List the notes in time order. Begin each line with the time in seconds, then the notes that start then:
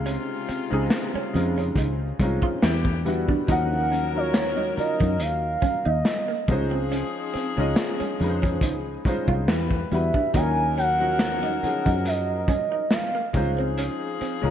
Already playing: C#2 C3 C#3 G#3 C4 D#4 F4
0.06 C#4, closed hi-hat
0.48 C4, muted fingered electric bass stroke, closed hi-hat, muted conga
0.70 C#2 C#3 G#3 C4 D#4 G#4
0.90 snare, closed hi-hat, muted conga
1.14 C#4, muted fingered electric bass stroke, high conga
1.33 F2 C#3 G#3 C4 D#4 F4, muted clean electric guitar stroke, closed hi-hat, muted conga, low conga
1.57 C#4, closed hi-hat, low conga
1.76 C#2 D#4, kick, closed hi-hat, muted conga
2.19 C2 G#3 C4 C#4 D#4 F4, muted clean electric guitar stroke, kick, closed hi-hat, muted conga, high conga
2.42 F4, kick
2.62 E2 E3 D4 E4 G4, snare, closed hi-hat, muted conga, high conga
2.85 kick
3.05 G3 B3 D4 E4 F#4, muted clean electric guitar stroke, closed hi-hat, muted conga, high conga, low conga
3.29 D4, kick
3.48 D#2 F3 F#3 C#4 D#4 A#4 F#5, kick, closed hi-hat, muted conga
3.90 C#4, closed hi-hat, muted conga
4.15 F#3 C#4 D#4 F4 A#4 C#5
4.34 snare, closed hi-hat
4.57 D#4, high conga
4.77 F#3 C#4 D#4 F4 A#4 D#5, muted clean electric guitar stroke, muted fingered electric bass stroke, closed hi-hat, muted conga, low conga
5.00 F#2 D#4, kick, closed hi-hat, low conga
5.19 D#2 F5, muted clean electric guitar stroke, closed hi-hat, muted conga
5.62 C#4, kick, closed hi-hat, muted conga, high conga
5.85 D#2 D#4 D#5
6.05 snare, closed hi-hat, muted conga, high conga
6.28 A#3
6.48 C#2 F3 G#3 C#4 D#4 F4 G#4 C5, muted clean electric guitar stroke, kick, closed hi-hat, muted conga, high conga, low conga
6.71 C4
6.91 C#4, closed hi-hat, muted conga
7.34 C4, muted fingered electric bass stroke, closed hi-hat, muted conga
7.57 C#2 G#3 C#4 D#4 F4 D#5
7.76 snare, closed hi-hat, muted conga
8.00 C#4, muted fingered electric bass stroke, closed hi-hat, high conga
8.20 F2 G#3 C#4 D#4 F4 B4, muted clean electric guitar stroke, closed hi-hat, muted conga, low conga
8.30 C5
8.42 C#4, kick, closed hi-hat, low conga
8.61 C#2 D#4, kick, closed hi-hat, muted conga
9.05 G#3 C#4 D#4 F4 C5, muted fingered electric bass stroke, muted clean electric guitar stroke, kick, closed hi-hat, muted conga, high conga
9.28 C2 F4, kick
9.48 E2 G3 E4 B4, snare, closed hi-hat, muted conga, high conga
9.71 kick
9.91 E2 G3 D4 E4 F#4 B4 E5, muted clean electric guitar stroke, closed hi-hat, high conga, low conga
10.14 D4, kick
10.34 D#2 F#3 C#4 D#4 F4 A#4 G#5, kick, closed hi-hat, muted conga
10.77 C#4 F#5, closed hi-hat, muted conga
10.99 F3 F#3 C#4 D#4 A#4
11.19 snare, closed hi-hat, muted conga
11.42 D#4, closed hi-hat, high conga
11.62 F3 C#4 D#4 G#4, muted clean electric guitar stroke, muted fingered electric bass stroke, closed hi-hat, low conga
11.69 F#3
11.85 F#2 D#4, kick, closed hi-hat, low conga
12.05 D#5, muted clean electric guitar stroke, closed hi-hat, muted conga
12.48 C#4, kick, closed hi-hat, muted conga, high conga
12.72 D#4
12.91 F5, snare, closed hi-hat, muted conga, high conga
13.15 A#3
13.33 C#2 F3 G#3 C#4 D#4 F4 G#4 C5, muted clean electric guitar stroke, kick, closed hi-hat, high conga, low conga
13.58 C4
13.78 C#4, closed hi-hat
14.19 C4, muted fingered electric bass stroke, closed hi-hat, muted conga
14.42 C#2 G#3 C#4 D#4 F4 A#4